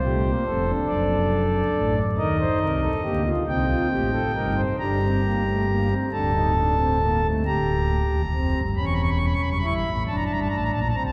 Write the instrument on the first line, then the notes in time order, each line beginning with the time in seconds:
pipe organ
Already playing: C2 C3 C5
0.04 A3 G4
0.25 A#3
0.46 F1 F2 C4 A4
0.67 D4
0.87 F#1 F#2 D5
1.73 A1 A2
2.17 D#2 D#3 D#4 A#4 D#5
2.40 C5
2.62 C2 C3 A#4
2.82 A4
3.03 D2 D3 A#3 G4
3.25 F4
3.47 C2 C3 C4 D#4 G5
3.69 F4
3.90 A1 A2 G4
4.13 A4
4.34 G1 G2 D#4 A#4
4.56 C5
4.78 G1 G2 D4 G4 A#5
5.01 C4
5.23 A#3
5.46 A3
5.69 A#3
5.90 C4
6.12 D1 D2 D4 A4 A5
6.34 D#4
6.55 D4
6.78 C4
7.02 A#3
7.23 A3
7.45 D1 D2 G4 A#5
8.10 D#1 D#2
8.33 F1 F2 C4
8.55 G1 G2
8.76 E1 E2 C#4 B5
8.86 C#6
8.93 B5
9.02 C#6
9.10 B5
9.17 C#6
9.26 B5
9.34 C#6
9.41 F#1 F#2 B5
9.50 C#6
9.58 B5
9.62 G1 G2 E4 C#6
9.75 B5
9.86 A1 A2
10.07 F#1 F#2 D4 A5
10.16 A#5
10.25 A5
10.29 G1 G2 A#5
10.40 A5
10.49 A1 A2 A#5
10.56 A5
10.63 A#5
10.71 A#1 A#2 A5
10.80 A#5
10.88 A5
10.94 C2 C3 C4 A#5
11.04 A5